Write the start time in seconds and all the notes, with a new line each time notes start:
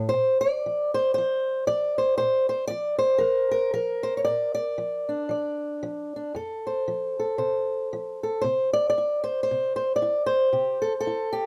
Already playing: A2
0.09 C5
0.13 A#2
0.41 D5
0.66 F3
0.94 C5
1.14 F3 C5
1.67 F3 D5
1.98 C5
2.18 A#2 C5
2.49 C5
2.68 F3 D5
2.99 C5
3.18 F3 A#4
3.51 A#4
3.73 F3 A#4
4.03 C5
4.17 C#5
4.25 A#2 D5
4.55 D5
4.78 F3
5.09 D4
5.29 F3 D5
5.83 F3
6.16 D4
6.35 F2 A4
6.67 C5
6.88 F3
7.19 A4
7.38 C3 C5
7.93 F3
8.23 A4
8.41 C3 C5
8.73 D5
8.90 D5
8.98 E4
9.24 C5
9.43 C5
9.51 C3
9.76 C5
9.96 D5
10.02 E4
10.26 C5
10.53 C3 G4
10.82 A4
11.00 A4
11.07 E4
11.33 G4